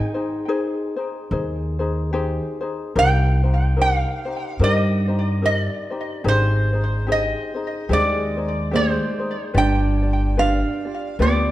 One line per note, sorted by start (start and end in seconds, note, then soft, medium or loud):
0.00 0.15 D#4 medium
0.00 2.10 D#4 medium
0.00 0.14 G#4 medium
0.00 0.13 C5 medium
0.00 2.11 G#5 loud
0.14 0.47 D#4 soft
0.14 0.48 G#4 medium
0.14 0.48 C5 medium
0.48 0.97 D#4 medium
0.48 0.97 G#4 loud
0.48 0.95 C5 loud
0.96 1.31 D#4 soft
0.96 1.31 G#4 medium
0.96 1.31 C5 medium
1.31 2.38 D#2 medium
1.31 1.80 D#4 medium
1.31 1.79 G#4 medium
1.31 1.78 C5 medium
1.79 2.12 D#4 medium
1.79 2.12 G#4 medium
1.79 2.12 C5 medium
2.13 2.61 D#4 medium
2.13 2.61 G4 medium
2.13 2.61 G#4 medium
2.13 2.59 C5 medium
2.61 2.95 D#4 soft
2.61 2.96 G#4 medium
2.61 2.95 C5 medium
2.95 4.03 C2 loud
2.95 3.44 D#4 medium
2.95 3.43 G4 medium
2.95 3.44 A#4 medium
2.95 3.42 C5 medium
2.95 3.81 G5 loud
3.43 3.76 D#4 soft
3.43 3.77 G4 soft
3.43 3.78 C5 medium
3.76 4.26 D#4 medium
3.76 4.25 G4 medium
3.76 4.25 A#4 medium
3.76 4.24 C5 medium
3.81 4.64 F5 medium
4.25 4.59 D#4 soft
4.25 4.60 G4 soft
4.25 4.60 C5 soft
4.59 5.67 G2 loud
4.59 5.08 D#4 medium
4.59 5.07 G4 medium
4.59 5.08 A#4 medium
4.59 5.06 C5 medium
4.64 5.45 D#5 medium
5.08 5.41 D#4 soft
5.08 5.42 G4 soft
5.08 5.42 C5 medium
5.42 5.90 D#4 medium
5.42 5.90 G4 medium
5.42 5.90 A#4 medium
5.42 5.89 C5 medium
5.42 5.57 D#5 medium
5.57 6.29 D5 medium
5.90 6.23 D#4 soft
5.90 6.23 G4 soft
5.90 6.25 C5 medium
6.24 7.32 G#1 medium
6.24 6.73 D#4 medium
6.24 6.72 G4 medium
6.24 6.72 G#4 medium
6.24 6.71 C5 medium
6.28 7.11 C5 medium
6.73 7.07 D#4 soft
6.73 7.07 G#4 soft
6.73 7.07 C5 medium
7.07 7.55 D#4 medium
7.07 7.55 G4 medium
7.07 7.54 G#4 medium
7.07 7.53 C5 medium
7.12 7.93 D#5 medium
7.54 7.89 D#4 soft
7.54 7.89 G#4 soft
7.54 7.89 C5 soft
7.89 8.97 D#2 medium
7.89 8.69 G#3 medium
7.89 8.37 D#4 medium
7.89 8.37 G4 medium
7.89 8.37 G#4 medium
7.89 8.36 C5 medium
7.89 8.76 D5 medium
8.37 8.71 D#4 soft
8.37 8.72 G#4 soft
8.37 8.71 C5 medium
8.71 9.34 G#3 medium
8.71 9.20 D#4 medium
8.71 9.20 G4 medium
8.71 9.19 G#4 medium
8.71 9.18 C5 medium
8.76 9.35 C5 medium
9.19 9.54 D#4 soft
9.19 9.53 G#4 medium
9.19 9.54 C5 medium
9.54 10.62 G1 loud
9.54 10.34 D4 medium
9.54 10.03 F4 medium
9.54 10.02 G4 medium
9.54 10.02 B4 medium
9.54 10.01 D5 medium
9.58 10.39 G5 loud
10.02 10.36 F4 soft
10.02 10.37 G4 soft
10.02 10.37 D5 medium
10.37 11.17 D4 medium
10.37 10.86 F4 medium
10.37 10.84 G4 medium
10.37 10.85 B4 medium
10.37 10.84 D5 medium
10.37 11.17 F5 medium
10.85 11.19 F4 soft
10.85 11.19 G4 soft
10.85 11.19 D5 soft
11.19 11.51 D2 medium
11.19 11.51 B3 medium
11.19 11.51 F4 medium
11.19 11.51 G4 medium
11.19 11.51 B4 medium
11.19 11.51 D5 medium